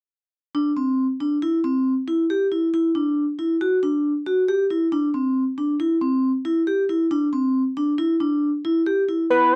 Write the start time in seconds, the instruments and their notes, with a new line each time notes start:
0.55 vibraphone D4
0.77 vibraphone C4
1.20 vibraphone D4
1.42 vibraphone E4
1.64 vibraphone C4
2.08 vibraphone E4
2.30 vibraphone G4
2.52 vibraphone E4
2.74 vibraphone E4
2.95 vibraphone D4
3.39 vibraphone E4
3.61 vibraphone F#4
3.83 vibraphone D4
4.26 vibraphone F#4
4.48 vibraphone G4
4.70 vibraphone E4
4.92 vibraphone D4
5.14 vibraphone C4
5.58 vibraphone D4
5.80 vibraphone E4
6.01 vibraphone C4
6.45 vibraphone E4
6.67 vibraphone G4
6.89 vibraphone E4
7.11 vibraphone D4
7.33 vibraphone C4
7.77 vibraphone D4
7.98 vibraphone E4
8.20 vibraphone D4
8.65 vibraphone E4
8.86 vibraphone G4
9.09 vibraphone E4
9.30 vibraphone E4, analog synth lead B4
9.52 analog synth lead C5